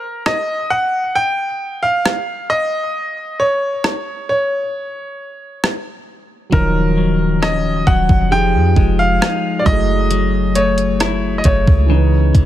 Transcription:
Already playing: A#4
0.26 D#5, cross-stick
0.70 F#5
1.15 G5
1.83 F5
2.06 cross-stick
2.50 D#5
3.40 C#5
3.84 cross-stick
4.29 C#5
5.64 cross-stick
6.50 D#1 D#3 F#3 D#4 A#4, kick
6.54 F3 C#5
6.97 F#3
7.42 C#4 D#5, cross-stick
7.87 D#1 F#3 F#5, kick
8.09 F1, kick
8.30 F3 D#4 F4 G4 G#4 G5
8.54 F2
8.76 F1 G#3, kick
8.99 F5
9.21 D#4, cross-stick
9.59 F#3 D5
9.65 F#1 F#3 A3 E4 D#5, kick
9.69 G#4
10.11 F#3, closed hi-hat
10.55 A3 C#5, closed hi-hat
10.78 closed hi-hat
11.00 E4, cross-stick, closed hi-hat
11.38 D#5
11.44 F#1 A3 C#5, kick, closed hi-hat
11.67 C#2, kick
11.86 C#3 E3 C#4
11.91 D#4 B4
12.34 C#2 E3, kick, closed hi-hat

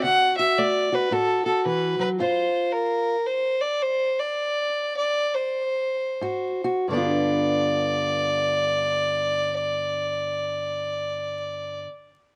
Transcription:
0.03 D3 F#4 F#5
0.37 F#4 E5
0.58 A3 D5
0.92 F#4 B4
1.11 A2 F#4 A4
1.45 F#4 A4
1.66 E3 B4
1.99 F#3 B4
2.19 G2 F4 C5
2.72 A#4
3.26 C5
3.61 D5
3.82 C5
4.20 D5
4.97 D5
5.34 C5
6.21 G#2 F#4
6.64 F#4
6.88 G2 D3 D5
6.93 B3 D4
6.97 F4

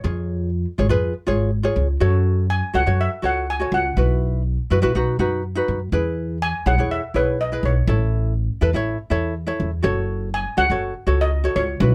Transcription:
Already playing: C#5
0.04 F2 F4 G#4 C#5
0.78 G#1 F4 G#4 C#5
0.89 F2 F4 G#4 B4
1.27 G#1 F4 G#4 C#5
1.63 F4 G#4 C#5
1.76 C#2
2.00 F#2 F#4 A4 C#5
2.50 G#5
2.73 C#2 F#4 A4 C#5 F#5
2.86 F#2 F#4 A4 C#5
3.01 E5
3.22 C#2 F#4 A4 C#5 F#5
3.50 G#5
3.60 F#4 A4 C#5
3.72 C#2 F#5
3.96 B1 E4 F#4 B4
4.70 F#2 E4 F#4 B4
4.82 B1 E4 F#4 B4
4.95 B1 D#4 F#4 B4
5.19 F#2 D#4 F#4 B4
5.55 D#4 F#4 B4
5.68 F#2
5.92 E2 E4 G#4 B4
6.42 G#5
6.66 B1 E4 G#4 C#5 F#5
6.78 E2 E4 G#4 C#5
6.91 E5
7.14 B1 E4 G#4 B4 C#5
7.41 D#5
7.52 E4 G#4 B4
7.63 B1 C#5
7.87 A1 E4 A4 C#5
8.61 E2 E4 A4 B4
8.73 A1 E4 A4 C#5
9.10 E2 E4 A4 C#5
9.47 E4 A4 C#5
9.60 E2
9.83 F#1 F#4 A4 C#5
10.34 G#5
10.57 C#2 F#4 A4 C#5 F#5
10.70 F#1 F#4 A4 C#5
11.07 C#2 F#4 A4 C#5
11.21 D#5
11.44 F#4 A4 C#5
11.56 C#2 C#5
11.80 B1 E4 F#4 B4

